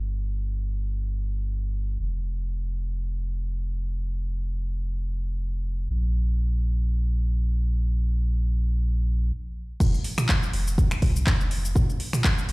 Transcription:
Already playing: G1
2.00 F1
5.90 A#1
9.80 F1, kick, mid tom, crash, shaker
9.94 shaker
10.04 open hi-hat
10.18 finger snap, mid tom, shaker
10.29 kick, clap, shaker
10.43 shaker
10.53 F1, open hi-hat
10.67 shaker
10.78 kick, shaker
10.91 finger snap, shaker
11.02 C2, kick, mid tom, open hi-hat
11.16 shaker
11.27 kick, clap, shaker
11.40 F1, shaker
11.51 open hi-hat
11.65 shaker
11.75 kick, mid tom, shaker
11.90 shaker
12.00 open hi-hat
12.13 finger snap, mid tom, shaker
12.24 kick, clap, shaker
12.38 shaker
12.49 F1, open hi-hat

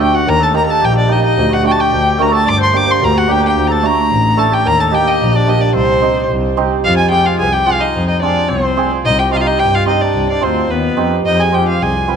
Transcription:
0.00 A3 D4 G4 A4 G5
0.13 F#4 F#5
0.27 D#2 A#4 A#5
0.41 A4 A5
0.53 A#3 D#4 G4 A#4 A#5
0.65 A4 A#5
0.70 A5
0.81 A#1 G4 G5
0.95 D4 D5
1.08 A#3 D#4 G4
1.12 D#5
1.22 D#4 D#5
1.37 D2
1.50 F#4 F#5
1.63 A3 D4 F#4 G5
1.72 A5
1.77 G4 G5
1.91 D2
2.18 A3 D4 F#4 A#4 A#5
2.32 A4 A5
2.45 G1 D5 D6
2.58 C5
2.63 C6
2.73 A#3 D4 G4 D6
2.87 C5
2.91 C6
3.01 D2 A#4 A#5
3.14 F#4 F#5
3.28 A#3 D4 G4 G5
3.46 G5
3.56 D2
3.67 A4 A#5
3.72 A5
3.83 A3 D4 F#4 A#5
4.11 A1
4.37 A3 D4 A4 A5
4.52 G4 G5
4.65 D#2 A#4 A#5
4.78 A4 A5
4.92 A#3 D#4 G4 G5
5.08 D#5
5.20 A#1
5.34 D4 D5
5.47 A#3 D#4 G4 D#5
5.60 D4 D5
5.74 C2 C4 C5
6.02 C4 D#4 G4
6.30 C2
6.57 C4 D#4 G4
6.84 F2 F4 F5
6.97 G#5
7.09 C4 F4 G4 G#4 G5
7.24 F4 F5
7.38 C2 G#4 B4 G#5
7.45 G#4
7.52 G4 G5
7.66 C4 F4 G#4 F5
7.80 D#4 D#5
7.95 F2
8.07 D#4 D#5
8.21 C4 D4 F4 G#4 D5
8.49 C2 C4 C5
8.57 B3
8.63 C4
8.77 C4 F4 G#4
9.04 C2 D#4 D#5
9.19 G4 G5
9.31 C4 D#4 F4 G4 F5
9.36 F4 D#5
9.41 F5
9.46 D#4 D#5
9.59 G2 G4 G5
9.74 F4 F5
9.86 C4 D#4 G4 D#5
10.02 D4 D5
10.14 C2
10.29 D4 D5
10.41 D2 C4 D#4 F4 C5
10.69 D#2 B3 B4
10.97 F2 C4 D#4 G4
11.25 F2 D#4 D#5
11.39 G#4 G#5
11.52 C4 F4 G4 G#4 G5
11.69 F5
11.79 C2 G#4 G#5
12.07 C4 F4 B4

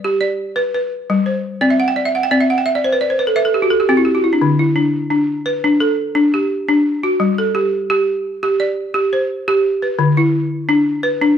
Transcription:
Already playing: D5
0.04 G4
0.21 D5
0.56 B4
0.74 B4
1.10 G3
1.26 C5
1.61 C4 D5
1.70 E5
1.80 F#5
1.88 G5
1.96 D5
2.05 E5
2.15 F#5
2.23 G5
2.31 C4 D5
2.41 E5
2.50 F#5
2.58 G5
2.66 E5
2.75 D5
2.84 C5
2.93 B4
3.01 D5
3.10 C5
3.19 B4
3.27 A4
3.36 B4 E5
3.45 A4
3.54 G4
3.62 F#4
3.71 A4
3.80 G4
3.89 C4 F#4
3.97 E4
4.05 G4
4.15 F#4
4.24 E4
4.33 D4
4.41 D3
4.59 E4
4.76 D4
5.11 D4
5.46 B4
5.64 D4
5.80 A4
6.15 D4
6.34 G4
6.68 D4
7.03 F#4
7.20 G3
7.38 A4
7.55 G4
7.90 G4
8.43 G4
8.60 D5
8.94 G4
9.13 C5
9.48 G4
9.82 B4
9.99 D3
10.17 E4
10.69 D4
11.03 B4
11.22 D4

